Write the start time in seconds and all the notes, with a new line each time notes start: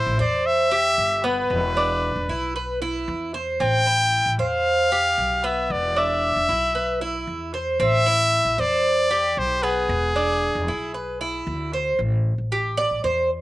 Already playing: E4 C5
0.06 A1
0.19 E2 C5 D5
0.46 E5
0.71 G4
0.98 G1
1.24 B3 B4
1.50 E1
1.77 D4
2.16 E1
2.29 B1 E4
2.56 B4
2.82 E4
3.08 E2
3.34 C5
3.60 A1 C4 G5
3.87 E4
4.26 A1
4.39 E2 C5 F5
4.92 G4
5.18 B1
5.44 B3 E5
5.70 E1 D5
5.96 D4 E5
6.36 E1
6.49 B1 E4
6.75 B4
7.01 E4
7.27 E2
7.54 C5
7.80 A1 C4 E5
8.06 E4
8.45 A1
8.58 E2 C5 D5
9.11 G4
9.37 B1 C5
9.63 B3 G#4
9.89 E1
10.16 D4
10.55 E1
10.68 B1 E4
10.94 B4
11.21 E4
11.47 D2
11.73 C5
11.99 A1
12.38 A1
12.52 G4
12.77 D5
12.91 A1
13.04 E2 C5